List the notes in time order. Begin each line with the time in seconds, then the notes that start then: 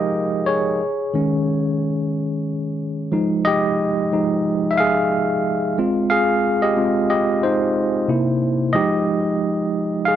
Already playing: F3 G#3 D#4 G4 G#4 A#4 D#5 F5 G5
0.46 G#4 C#5
1.14 D#3 G#3 C#4
3.12 F3 G#3 D#4
3.45 G4 D#5
4.12 F3 G#3 D#4
4.71 E5
4.78 G#4 F5
5.78 G#3 C4 F4
6.10 G#4 F5
6.62 G4 D#5
6.77 G#3 C4 F4
7.10 G4 D#5
7.43 D#4 C5
8.08 C3 A#3 E4
8.73 F3 G#3 D#4 G4 D#5
10.05 G#4 F5